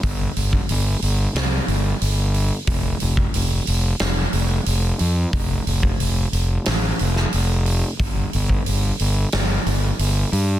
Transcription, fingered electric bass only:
\new Staff \with { instrumentName = "Fingered electric bass" } { \clef bass \time 4/4 \key f \lydian \tempo 4 = 90 g,,8 g,,8 g,,8 g,,8 c,8 g,,8 g,,4 | f,,8 f,,8 f,,8 f,,8 f,,8 f,,8 f,,8 f,8 | f,,8 f,,8 f,,8 f,,8 a,,8 f,,8 f,,4 | g,,8 g,,8 g,,8 g,,8 g,,8 g,,8 g,,8 g,8 | }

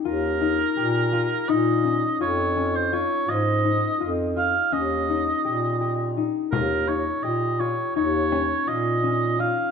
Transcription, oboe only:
\new Staff \with { instrumentName = "Oboe" } { \time 9/8 \key ees \mixolydian \tempo 4. = 56 bes'2 ees''4 des''8. c''16 des''8 | ees''4 r8 f''8 ees''2 r8 | bes'8 des''8 ees''8 des''8 des''4 ees''4 f''8 | }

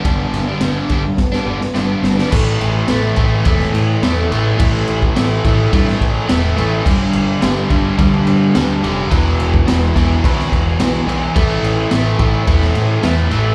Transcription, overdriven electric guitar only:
\new Staff \with { instrumentName = "Overdriven electric guitar" } { \clef bass \time 4/4 \key g \mixolydian \tempo 4 = 106 <g, d g b d'>8. <g b d'>16 <g, d g b d'>8 <d g b d'>8. <g b d'>16 <d g b d'>8 <g, d g b d'>16 <g b d'>8 <g b d'>16 | <a, e a>4 <a, e a>8 <a, e a>8 <a, e a>4 <a, e a>8 <a, e a>8 | <a, e a>4 <a, e a>8 <a, e a>8 <a, e a>4 <a, e a>8 <a, e a>8 | <g, d g>4 <g, d g>8 <g, d g>8 <g, d g>4 <g, d g>8 <g, d g>8 |
<e, b, e>4 <e, b, e>8 <e, b, e>8 <e, b, e>4 <e, b, e>8 <e, b, e>8 | <a, e a>4 <a, e a>8 <a, e a>8 <a, e a>4 <a, e a>8 <a, e a>8 | }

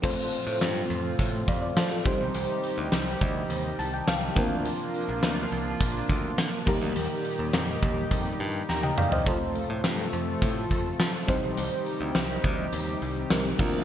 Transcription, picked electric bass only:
\new Staff \with { instrumentName = "Picked electric bass" } { \clef bass \time 4/4 \key c \dorian \tempo 4 = 104 f,16 r8 a,16 g,8 f,8 a,8 f,8 f16 r16 c,16 ces,16 | c,16 r8 d,16 c,8 d,8 ees,8 c,8 c,8 d,8~ | d,16 r8 bes,,16 d,8 c,8 bes,,8 d,8 d16 r16 ees,16 d,16 | ees,16 r8 ees,16 f,8 ees,8 f,8 g,8 ees,8 e,8 |
f,16 r8 a,16 g,8 f,8 a,8 f,8 f16 r16 c,16 ces,16 | c,16 r8 d,16 c,8 d,8 ees,8 c,8 c,8 d,8 | }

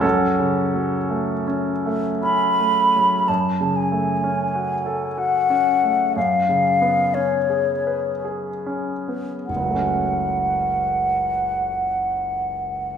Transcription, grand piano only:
<<
  \new Staff \with { instrumentName = "Grand piano" } { \time 3/4 \key fis \minor \tempo 4 = 56 <cis' fis' a'>2 r4 | r2. | r2. | <fis,, cis, fis a cis' fis'>2. | }
  \new Staff \with { instrumentName = "Grand piano" } { \time 3/4 \key fis \minor \tuplet 3/2 { fis,8 cis8 fis8 a8 cis'8 a8 cis'8 a8 fis8 } | \tuplet 3/2 { fis,8 cis8 a8 cis'8 fis'8 a'8 fis'8 cis'8 a8 } | \tuplet 3/2 { fis,8 cis8 b8 cis'8 gis'8 b'8 gis'8 cis'8 b8 } | r2. | }
>>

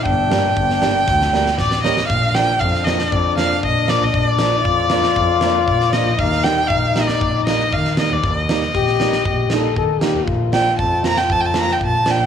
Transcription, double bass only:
\new Staff \with { instrumentName = "Double bass" } { \clef bass \time 4/4 \key g \minor \tempo 4 = 117 g,,8 g,8 g,,4 d,4 a,,8 r8 | \key bes \major bes,,8 r8 f,4 f,4 bes,8. bes,,16 | bes,,8 r8 f,4 f,4 bes,8. bes,,16 | ees,8 r8 bes,,4 bes,,4 ees8. ees,16 |
ees,8 r8 bes,,4 bes,,4 ees8. ees,16 | bes,,8 r8 f,4 f,4 bes,8. bes,,16 | }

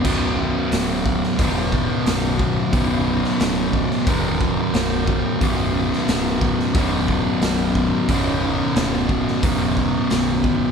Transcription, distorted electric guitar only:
\new Staff \with { instrumentName = "Distorted electric guitar" } { \clef bass \time 4/4 \key b \minor \tempo 4 = 90 <b,, fis, b,>2 <b,, fis, b,>2 | <b,, fis, b,>2 <b,, fis, b,>2 | <b,, fis, b,>2 <b,, fis, b,>2 | <b,, fis, b,>2 <b,, fis, b,>2 | }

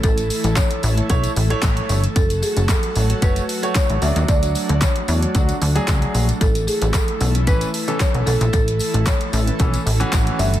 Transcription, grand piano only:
\new Staff \with { instrumentName = "Grand piano" } { \time 4/4 \key a \major \tempo 4 = 113 r4. <e' cis''>16 <e' cis''>16 <a e' cis''>16 r8 <a e' cis''>4 r16 | r4. <fis' cis''>16 <fis' cis''>16 <a fis' cis''>16 r8 <a fis' cis''>8. <fis d' d''>8~ | <fis d' d''>4 r8 <d' cis''>16 <d' cis''>16 <fis d' fis'>16 r8 <fis d' gis'>4 r16 | r4. <cis' a'>16 <cis' a'>16 <e cis' b'>16 r8 <e cis' a'>4 r16 |
r4. <cis' a'>16 <cis' b'>16 <e cis' a'>16 r8 <e cis' fis'>4 r16 | }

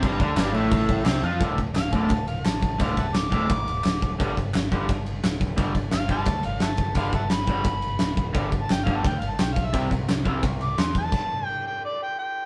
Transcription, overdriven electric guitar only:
\new Staff \with { instrumentName = "Overdriven electric guitar" } { \clef bass \time 4/4 \key g \major \tempo 4 = 173 <g, g>8 <d d'>8 <g, g>8 <a, a>4. <c c'>8 <f f'>8 | <d, a, d>8 r4 <d, a, d>8 r2 | <d, a, d>8 r4 <d, a, d>8 r2 | <g, d g>8 r4 <g, d g>8 r2 |
<g, d g>8 r4 <g, d g>8 r2 | <g, d g>8 r4 <g, d g>8 r2 | <g, d g>8 r4 <g, d g>8 r2 | <c g c'>8 r4 <c g c'>8 r2 |
r1 | }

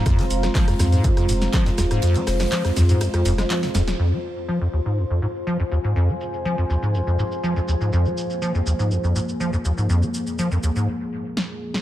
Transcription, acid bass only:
\new Staff \with { instrumentName = "Acid bass" } { \clef bass \time 4/4 \key f \minor \tempo 4 = 122 f,16 aes16 r8 f16 f,16 ees,16 aes,16 f,16 f,16 aes,16 r16 f16 f,16 ees,16 aes,16 | f,16 aes16 r8 f16 f,16 ees,16 aes,16 f,16 f,16 f,16 aes16 f16 c16 f,16 r16 | f,16 aes16 r8 f16 f,16 ees,16 aes,16 f,16 f,16 aes,16 r16 f16 f,16 ees,16 aes,16 | f,16 aes16 r8 f16 f,16 ees,16 aes,16 f,16 f,16 aes,16 r16 f16 f,16 ees,16 aes,16 |
f,16 aes16 r8 f16 f,16 ees,16 aes,16 f,16 f,16 aes,16 r16 f16 f,16 ees,16 aes,16 | f,16 aes16 r8 f16 f,16 ees,16 aes,16 r2 | }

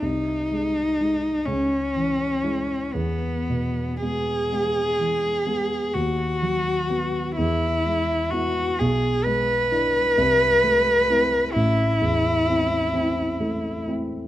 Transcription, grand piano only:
\new Staff \with { instrumentName = "Grand piano" } { \clef bass \time 6/8 \key e \major \tempo 4. = 42 bis,,8 gis8 <gis dis'>8 cis,8 e8 <gis e'>8 | e,8 b,8 <gis b>8 <gis b>8 e8 <gis b>8 | dis,8 fis8 b8 e,8 gis8 <b e'>8 | \key a \minor b,,8 gis8 <d' e'>8 c,8 a8 <c' e'>8 |
a,,8 e,8 <c' e'>8 <c' e'>8 a8 <c' e'>8 | }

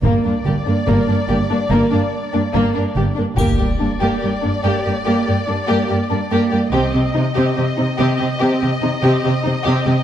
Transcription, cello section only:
\new Staff \with { instrumentName = "Cello section" } { \clef bass \time 4/4 \key g \minor \tempo 4 = 72 g,16 g,16 g,16 g,16 g,16 g,16 g,16 g,16 g,16 g,16 r16 g,16 g,16 g,16 g,16 g,16 | g,16 g,16 g,16 g,16 g,16 g,16 g,16 g,16 g,16 g,16 g,16 g,16 g,16 g,16 g,16 g,16 | c16 c16 c16 c16 c16 c16 c16 c16 c16 c16 c16 c16 c16 c16 c16 c16 | }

